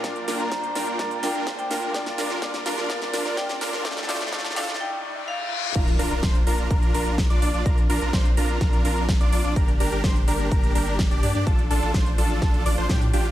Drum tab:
CC |--------------------------------|--------------------------------|--------------------------------|x-------------------------------|
HH |x-x-o-x-x-x-o-x-x-x-o-x-x-x-o-x-|x-x-o-x-x-x-o-x-x-x-o---x-x-o-x-|x-x-o-x-x-x-o-x-----------------|x-x-o-x-x-x-o-x-x-x-o-x-x-x-o-x-|
SD |o---o---o---o---o---o---o---o---|o-o-o-o-o-o-o-o-o-o-o-o-o-o-o-o-|oooooooooooooooo----------------|--------o---------------o-------|
BD |o-------o-------o-------o-------|o-------o-------o-------o-------|o-------o-----------------------|o-------o-------o-------o-------|

CC |--------------------------------|--------------------------------|--------------------------------|
HH |x-x-o-x-x-x-o-x-x-x-o-x-x-x-o-x-|x-x-o-x-x-x-o-x-x-x-o-x-x-x-o-x-|x-x-o-x-x-x-o-x-x-x-o-x-x-x-o-x-|
SD |--------o-------o-------o-------|--------o---------------o-------|--------o-------o-------o-------|
BD |o-------o-------o-------o-------|o-------o-------o-------o-------|o-------o-------o-------o-------|